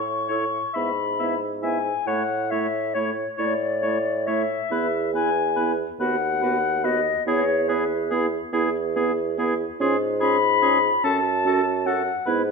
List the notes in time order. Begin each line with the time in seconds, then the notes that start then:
Already playing: A2 C#6
0.28 E4 A4 C#5
0.74 G#2 B3 E4 E5 B5
1.19 B3 E4 E5
1.62 B3 E4 E5 G#5
2.06 A2 A3 E4 C#5 F#5
2.51 A3 E4 C#5 E5
2.94 A3 E4 C#5
3.37 A2 A3 E4 C#5 D5
3.82 A3 E4 C#5
4.27 A3 E4 C#5 E5
4.71 E2 B3 E4 B4
5.13 B3 E4 B4 G#5
5.56 B3 E4 B4
6.00 D#2 B3 F#4 B4 F#5
6.42 B3 F#4 B4
6.84 B3 F#4 B4 D#5
7.26 E2 B3 E4 G#4 C#5
7.68 B3 E4 G#4 B4
8.10 B3 E4 G#4
8.53 E2 B3 E4 G#4
8.96 B3 E4 G#4
9.38 B3 E4 G#4
9.80 G#2 C#4 F4 G#4
10.21 C#4 F4 G#4 B5
10.62 C#4 F4 G#4
11.04 F#2 C#4 F#4 A4 A5
11.45 C#4 F#4 A4
11.86 C#4 F#4 A4 F#5
12.26 G#2 B3 E4 B4